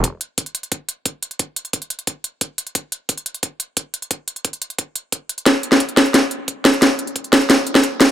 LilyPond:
\new DrumStaff \with { instrumentName = "Drums" } \drummode { \time 4/4 \tempo 4 = 177 <hh bd>8 hh8 <hh bd>16 hh16 hh16 hh16 <hh bd>8 hh8 <hh bd>8 hh16 hh16 | <hh bd>8 hh16 hh16 <hh bd>16 hh16 hh16 hh16 <hh bd>8 hh8 <hh bd>8 hh16 hh16 | <hh bd>8 hh8 <hh bd>16 hh16 hh16 hh16 <hh bd>8 hh8 <hh bd>8 hh16 hh16 | <hh bd>8 hh16 hh16 <hh bd>16 hh16 hh16 hh16 <hh bd>8 hh8 <hh bd>8 hh16 hh16 |
<hh bd sn>8 hh16 sn16 <hh bd>16 hh16 <hh sn>16 hh16 <hh bd sn>8 hh8 <hh bd>8 <hh sn>16 hh16 | <hh bd sn>8 hh16 hh16 <hh bd>16 hh16 <hh sn>16 hh16 <hh bd sn>8 hh16 sn16 <hh bd>8 <hh sn>8 | }